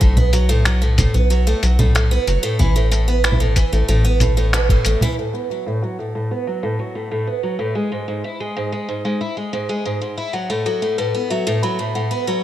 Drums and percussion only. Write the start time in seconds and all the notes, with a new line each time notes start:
0.01 kick, shaker
0.17 low conga, shaker
0.33 closed hi-hat, shaker
0.50 shaker
0.65 finger snap, shaker
0.82 shaker
0.98 kick, closed hi-hat, low conga, shaker
1.15 shaker
1.31 shaker
1.47 shaker
1.63 closed hi-hat, shaker
1.79 low conga, shaker
1.96 finger snap, shaker
2.12 shaker
2.28 closed hi-hat, shaker
2.44 shaker
2.60 kick, low conga, shaker
2.76 shaker
2.92 closed hi-hat, shaker
3.09 shaker
3.24 finger snap, shaker
3.32 low conga
3.40 shaker
3.56 kick, closed hi-hat, shaker
3.72 shaker
3.88 shaker
4.05 shaker
4.20 closed hi-hat, low conga, shaker
4.37 shaker
4.53 finger snap, shaker
4.69 kick, shaker
4.85 closed hi-hat, shaker
5.01 low conga, shaker